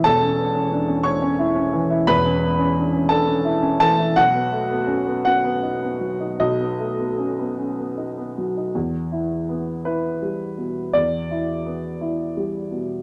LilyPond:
<<
  \new Staff \with { instrumentName = "Upright piano" } { \time 6/8 \key e \dorian \tempo 4. = 56 <a' a''>4. <cis'' cis'''>4. | <b' b''>4. <a' a''>4 <a' a''>8 | <fis' fis''>4. <fis' fis''>4. | <dis' dis''>4. r4. |
r4. b'4. | d''2~ d''8 r8 | }
  \new Staff \with { instrumentName = "Upright piano" } { \time 6/8 \key e \dorian <e,, e,>16 cis'16 b16 cis'16 d'16 cis'16 d'16 cis'16 e'16 cis'16 e16 e'16 | <e,, e,>16 cis'16 b16 cis'16 d'16 cis'16 d'16 cis'16 e'16 cis'16 e16 e'16 | b,,16 b16 a16 b16 cis'16 b16 cis'16 b16 dis'16 b16 fis16 dis'16 | b,,16 b16 a16 b16 cis'16 b16 cis'16 b16 dis'16 b16 fis16 dis'16 |
e,8 e'8 b8 e'8 g8 b,8 | e,8 e'8 b8 e'8 g8 b,8 | }
>>